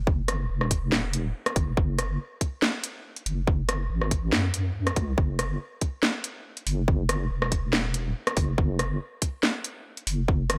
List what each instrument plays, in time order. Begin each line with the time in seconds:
Already playing: wobble bass F#1
0.07 kick
0.28 cross-stick, closed hi-hat
0.50 wobble bass E1
0.61 cross-stick
0.71 kick, closed hi-hat
0.92 snare
1.13 closed hi-hat
1.46 cross-stick, closed hi-hat
1.56 wobble bass F#1, kick, closed hi-hat
1.77 wobble bass F#1, kick
1.99 cross-stick, closed hi-hat
2.41 kick, closed hi-hat
2.62 snare
2.84 closed hi-hat
3.16 closed hi-hat
3.26 wobble bass F#1, closed hi-hat
3.47 kick
3.69 cross-stick, closed hi-hat
3.90 wobble bass G#1
4.01 cross-stick
4.11 kick, closed hi-hat
4.32 wobble bass F#2, snare
4.54 closed hi-hat
4.87 cross-stick, closed hi-hat
4.96 wobble bass C#2, kick, closed hi-hat
5.18 wobble bass F#1, kick
5.39 cross-stick, closed hi-hat
5.81 kick, closed hi-hat
6.03 snare
6.24 closed hi-hat
6.57 closed hi-hat
6.67 wobble bass F#1, open hi-hat
6.88 kick
7.09 cross-stick, closed hi-hat
7.30 wobble bass E1
7.42 cross-stick
7.52 kick, closed hi-hat
7.73 snare
7.94 closed hi-hat
8.27 cross-stick, closed hi-hat
8.37 wobble bass F#1, kick, open hi-hat
8.58 wobble bass F#1, kick
8.79 cross-stick, closed hi-hat
9.22 kick, closed hi-hat
9.43 snare
9.64 closed hi-hat
9.97 closed hi-hat
10.07 wobble bass F#1, open hi-hat
10.28 kick
10.50 cross-stick, closed hi-hat